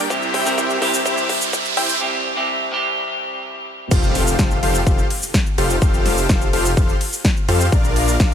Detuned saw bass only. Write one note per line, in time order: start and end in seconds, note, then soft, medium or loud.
3.91 4.37 F1 loud
4.39 4.60 F1 loud
4.63 4.84 F1 loud
4.87 5.03 F1 loud
5.58 5.79 F1 loud
5.82 6.27 F1 loud
6.30 6.51 F1 loud
6.53 6.75 F1 loud
6.77 6.93 F1 loud
7.49 7.70 F2 loud
7.72 8.18 A#1 loud
8.20 8.34 A#1 loud